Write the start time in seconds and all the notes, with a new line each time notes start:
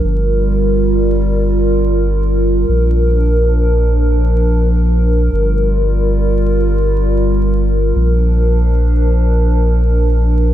Already playing: A#4
0.04 G1 G3 F4
2.69 A#1 F3 D4
5.32 G1 G3 F4
7.95 A#1 F3 D4